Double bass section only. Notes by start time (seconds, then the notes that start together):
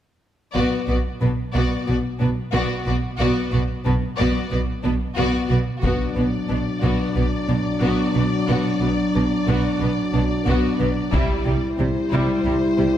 0.55 B1
0.88 B1
1.22 B1
1.55 B1
1.88 B1
2.21 B1
2.54 B1
2.87 B1
3.20 B1
3.53 B1
3.86 B1
4.19 B1
4.52 B1
4.85 B1
5.17 B1
5.50 B1
5.83 B1
6.17 B1
6.50 B1
6.82 B1
7.16 B1
7.49 B1
7.82 B1
8.15 B1
8.48 B1
8.81 B1
9.14 B1
9.47 B1
9.80 B1
10.14 B1
10.47 B1
10.80 B1
11.14 C2
11.47 C2
11.80 C2
12.13 C2
12.45 C2
12.78 C2